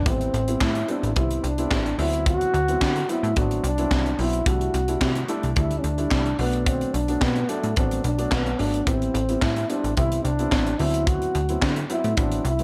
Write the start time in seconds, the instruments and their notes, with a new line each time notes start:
0.05 analog synth bass A1, grand piano G3 B3 C4 E4, trombone C4, kick, closed hi-hat
0.21 closed hi-hat
0.33 analog synth bass A1, closed hi-hat
0.48 grand piano G3 B3 C4 E4, closed hi-hat
0.61 analog synth bass A2, trombone E4, kick, snare, clap
0.75 closed hi-hat
0.88 grand piano G3 B3 C4 E4, trombone D4, closed hi-hat
1.03 analog synth bass A1, closed hi-hat
1.16 analog synth bass C2, grand piano G3 B3 C4 E4, trombone E4, kick, closed hi-hat
1.31 closed hi-hat
1.44 analog synth bass C2, trombone D4, closed hi-hat
1.58 grand piano G3 B3 C4 E4, closed hi-hat
1.71 analog synth bass A1, kick, snare, clap
1.86 closed hi-hat
1.98 analog synth bass D2, grand piano F#3 B3 C4 E4, trombone E4, open hi-hat
2.13 closed hi-hat
2.26 trombone F#4, kick, closed hi-hat
2.41 closed hi-hat
2.54 analog synth bass D2, closed hi-hat
2.68 grand piano F#3 B3 C4 E4, closed hi-hat
2.81 analog synth bass D3, kick, snare, clap
2.96 closed hi-hat
3.09 grand piano F#3 B3 C4 E4, trombone E4, closed hi-hat
3.23 analog synth bass A2, closed hi-hat
3.36 analog synth bass A1, grand piano F#3 B3 C4 F#4, trombone D4, kick, closed hi-hat
3.51 closed hi-hat
3.63 analog synth bass C2, trombone D4, closed hi-hat
3.78 grand piano F#3 B3 C4 E4, closed hi-hat
3.91 analog synth bass C2, kick, snare, clap
4.06 closed hi-hat
4.19 analog synth bass B1, grand piano F#3 B3 C4 E4, trombone E4, open hi-hat
4.33 closed hi-hat
4.46 analog synth bass C2, grand piano G3 A3 D4 E4, trombone F#4, kick, closed hi-hat
4.61 closed hi-hat
4.74 analog synth bass C2, closed hi-hat
4.88 grand piano G3 A3 D4 E4, closed hi-hat
5.01 analog synth bass C3, kick, snare, clap
5.15 closed hi-hat
5.28 grand piano G3 A3 D4 E4, closed hi-hat
5.43 analog synth bass C2, closed hi-hat
5.56 analog synth bass D2, grand piano G3 A3 D4 E4, trombone E4, kick, closed hi-hat
5.71 closed hi-hat
5.79 trombone C#4
5.84 analog synth bass D2, trombone D4, closed hi-hat
5.98 grand piano G3 A3 D4 E4, closed hi-hat
6.11 analog synth bass C2, kick, snare, clap
6.26 closed hi-hat
6.38 analog synth bass B1, grand piano F#3 A3 B3 D4, trombone B3, open hi-hat
6.53 closed hi-hat
6.66 trombone C4, kick, closed hi-hat
6.81 closed hi-hat
6.94 analog synth bass B1, trombone D4, closed hi-hat
7.08 grand piano F#3 A3 B3 D4, closed hi-hat
7.21 analog synth bass B2, trombone B3, kick, snare, clap
7.36 closed hi-hat
7.49 grand piano F#3 A3 B3 D4, trombone A3, closed hi-hat
7.64 analog synth bass A2, closed hi-hat
7.76 analog synth bass A1, grand piano F#3 A3 B3 D4, trombone C4, kick, closed hi-hat
7.91 closed hi-hat
8.04 analog synth bass B1, trombone D4, closed hi-hat
8.18 grand piano F#3 A3 B3 D4, closed hi-hat
8.32 analog synth bass B1, trombone B3, kick, snare, clap
8.46 closed hi-hat
8.59 analog synth bass G#1, grand piano F#3 A3 B3 D4, trombone D4, open hi-hat
8.74 closed hi-hat
8.86 analog synth bass A1, grand piano G3 B3 C4 E4, trombone C4, kick, closed hi-hat
9.02 closed hi-hat
9.14 analog synth bass A1, closed hi-hat
9.29 grand piano G3 B3 C4 E4, closed hi-hat
9.42 analog synth bass A2, trombone E4, kick, snare, clap
9.56 closed hi-hat
9.69 grand piano G3 B3 C4 E4, trombone D4, closed hi-hat
9.84 analog synth bass A1, closed hi-hat
9.97 analog synth bass C2, grand piano G3 B3 C4 E4, trombone E4, kick, closed hi-hat
10.12 closed hi-hat
10.24 analog synth bass C2, trombone D4, closed hi-hat
10.39 grand piano G3 B3 C4 E4, closed hi-hat
10.52 analog synth bass A1, kick, snare, clap
10.67 closed hi-hat
10.79 analog synth bass D2, grand piano F#3 B3 C4 E4, trombone E4, open hi-hat
10.94 closed hi-hat
11.07 trombone F#4, kick, closed hi-hat
11.22 closed hi-hat
11.35 analog synth bass D2, closed hi-hat
11.49 grand piano F#3 B3 C4 E4, closed hi-hat
11.62 analog synth bass D3, kick, snare, clap
11.76 closed hi-hat
11.90 grand piano F#3 B3 C4 E4, trombone E4, closed hi-hat
12.04 analog synth bass A2, closed hi-hat
12.17 analog synth bass A1, grand piano F#3 B3 C4 E4, trombone D4, kick, closed hi-hat
12.32 closed hi-hat
12.45 analog synth bass C2, trombone E4, closed hi-hat
12.59 grand piano F#3 B3 C4 E4, closed hi-hat